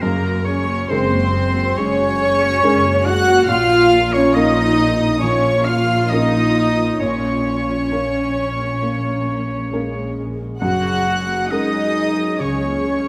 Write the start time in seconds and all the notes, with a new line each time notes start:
0.02 F#1 F#2 G#3 A#3 G#4 A#4 A#5
0.24 A#3 F#4
0.45 G#3 C#4 G#4 C#5 C#6
0.67 A#3 F#4
0.89 F#1 C#3 G#3 C4 G#4 A#4 C5 C6
1.11 A#3 F#4
1.33 G#3 G#4
1.55 A#3 F#4
1.76 F#1 G#3 C#4 G#4 C#5 C#6
1.98 A#3 F#4
2.20 G#3 G#4
2.41 A#3 F#4
2.62 F#1 G#3 C#4 G#4 A#4
2.83 A#3 F#4
3.05 G#3 F#4 G#4 F#5 F#6
3.27 A#3 F#4
3.47 A#1 A#2 A#3 F4 F5 F6
4.13 C#4 C#5 C#6
4.34 A#3 C#4 D#4 A#4 D#5 D#6
5.20 F3 A#3 C#4 F4 C#5 C#6
5.65 F4 F5 F6
6.10 A#3 C#4 D#4 A#4 D#5 D#6
6.99 A#1 A#2 A#3 C#4 F4 C#5 C#6
7.92 A#3 C#4 A#4
8.81 A#3
9.71 G#3 A#3 C#4 A#4
10.60 F#1 F#2 C#3 F#4 G#4 F#5 F#6
10.84 F#3
11.07 G#3
11.28 A#3
11.50 G#3 C#4 D#4 A#4 D#5 D#6
11.73 F#3
11.96 C#3
12.18 F#3
12.40 C#2 C#3 G#3 C#4 C#5 C#6
12.62 A#3
12.84 G#3